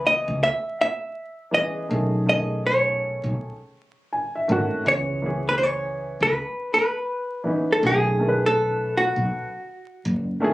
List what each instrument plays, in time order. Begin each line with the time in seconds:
Already playing: fretless electric bass C#2, upright piano E3 B3 C#4 G#4
0.07 hollow-body jazz guitar D#5
0.28 fretless electric bass C#2
0.43 hollow-body jazz guitar E5
0.81 hollow-body jazz guitar E5
1.51 upright piano E3 B3 C#4, hollow-body jazz guitar D#5
1.56 upright piano G#4
1.88 fretless electric bass B1, upright piano D#3 A3 C#4 G#4
2.26 upright piano D#3 A3 C#4 G#4, hollow-body jazz guitar D#5
2.67 hollow-body jazz guitar C#5
3.24 fretless electric bass B1
4.13 upright piano G#5
4.35 upright piano E5
4.48 fretless electric bass G#1, upright piano D#3 A3 C#4 F#4
4.85 fretless electric bass C#2, upright piano E3 B3 C#4 G#4, hollow-body jazz guitar C#5
5.22 upright piano E3 B3 C#4 G#4
5.49 hollow-body jazz guitar B4
5.58 hollow-body jazz guitar C5
5.63 hollow-body jazz guitar C#5
6.20 fretless electric bass C#2, hollow-body jazz guitar B4
6.74 hollow-body jazz guitar B4
7.44 upright piano E3 B3 C#4 D#4
7.72 hollow-body jazz guitar A4
7.80 fretless electric bass B1, upright piano D#3 A3 C#4 G#4
7.87 hollow-body jazz guitar G#4
8.18 upright piano D#3 A3 C#4 A4
8.28 upright piano B4
8.46 hollow-body jazz guitar A4
8.97 hollow-body jazz guitar F#4
9.16 fretless electric bass B1
10.05 fretless electric bass F#1
10.40 upright piano D#3 A3 C#4 G#4